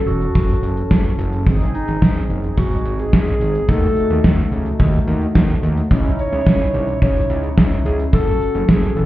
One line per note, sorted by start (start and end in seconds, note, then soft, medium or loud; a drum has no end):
0.00 1.42 C#4 medium
0.00 1.42 F#4 medium
0.00 1.42 A4 medium
0.07 0.27 E1 medium
0.07 1.18 F#4 medium
0.07 closed hi-hat medium
0.21 closed hi-hat soft
0.35 0.55 F#1 loud
0.35 kick loud
0.35 closed hi-hat medium
0.49 closed hi-hat medium
0.63 0.83 F#1 medium
0.63 closed hi-hat medium
0.77 closed hi-hat soft
0.91 1.10 F#1 medium
0.91 kick loud
0.91 snare loud
1.05 closed hi-hat medium
1.19 1.48 F#1 loud
1.19 closed hi-hat medium
1.33 closed hi-hat medium
1.46 1.66 G#1 loud
1.46 3.65 C4 medium
1.46 3.65 D#4 medium
1.46 3.65 G#4 medium
1.46 kick loud
1.46 closed hi-hat medium
1.60 closed hi-hat soft
1.74 2.26 D#4 loud
1.74 closed hi-hat medium
1.88 1.98 G#1 medium
1.88 closed hi-hat medium
2.02 2.21 G#1 loud
2.02 kick loud
2.02 snare loud
2.16 closed hi-hat soft
2.30 2.49 F#1 medium
2.30 closed hi-hat medium
2.44 closed hi-hat soft
2.58 2.77 G#1 loud
2.58 3.01 F#4 medium
2.58 kick loud
2.58 closed hi-hat medium
2.71 closed hi-hat medium
2.85 3.05 G#1 medium
2.85 closed hi-hat medium
2.99 3.13 G#4 medium
2.99 closed hi-hat soft
3.13 3.33 G#1 loud
3.13 3.70 G#4 medium
3.13 kick loud
3.13 snare loud
3.27 closed hi-hat medium
3.41 3.60 G#1 medium
3.41 closed hi-hat medium
3.55 closed hi-hat medium
3.69 3.88 D#2 loud
3.69 5.87 A3 medium
3.69 5.87 D#4 medium
3.69 5.87 F#4 medium
3.69 4.52 A4 loud
3.69 kick loud
3.69 closed hi-hat medium
3.83 closed hi-hat soft
3.97 closed hi-hat medium
4.10 4.20 D#2 loud
4.10 closed hi-hat medium
4.24 4.44 D#2 loud
4.24 kick loud
4.24 snare loud
4.38 closed hi-hat soft
4.52 4.71 C#2 medium
4.52 closed hi-hat medium
4.66 closed hi-hat soft
4.80 4.99 D#2 loud
4.80 kick loud
4.80 closed hi-hat medium
4.93 closed hi-hat medium
5.08 5.27 D#2 loud
5.08 closed hi-hat medium
5.21 closed hi-hat soft
5.35 5.55 D#2 medium
5.35 kick loud
5.35 snare loud
5.49 closed hi-hat medium
5.63 5.82 D#2 loud
5.63 closed hi-hat medium
5.77 closed hi-hat medium
5.91 6.10 C#2 loud
5.91 8.09 C#4 medium
5.91 8.09 D#4 medium
5.91 8.09 E4 medium
5.91 kick loud
5.91 closed hi-hat medium
6.05 closed hi-hat soft
6.19 6.98 C#5 loud
6.19 closed hi-hat medium
6.32 6.42 C#2 loud
6.32 closed hi-hat soft
6.46 6.66 C#2 medium
6.46 kick loud
6.46 snare loud
6.60 closed hi-hat soft
6.74 6.94 C2 medium
6.74 closed hi-hat medium
6.88 closed hi-hat soft
7.02 7.21 C#2 loud
7.02 7.54 C#5 loud
7.02 kick loud
7.02 closed hi-hat medium
7.16 closed hi-hat medium
7.30 7.49 C#2 loud
7.30 closed hi-hat medium
7.44 closed hi-hat soft
7.58 7.77 C#2 loud
7.58 kick loud
7.58 snare loud
7.72 closed hi-hat medium
7.85 8.05 C#2 loud
7.85 7.98 G#4 loud
7.85 closed hi-hat medium
7.99 closed hi-hat medium
8.13 8.33 F#1 loud
8.13 9.06 C#4 medium
8.13 9.06 F#4 medium
8.13 8.70 A4 loud
8.13 9.06 A4 medium
8.13 kick loud
8.13 closed hi-hat medium
8.27 closed hi-hat soft
8.41 closed hi-hat medium
8.55 8.64 F#1 medium
8.55 closed hi-hat soft
8.69 8.88 F#1 medium
8.69 8.98 G#4 loud
8.69 kick loud
8.69 snare loud
8.83 closed hi-hat soft
8.96 9.06 E1 medium
8.96 9.06 A4 medium
8.96 closed hi-hat medium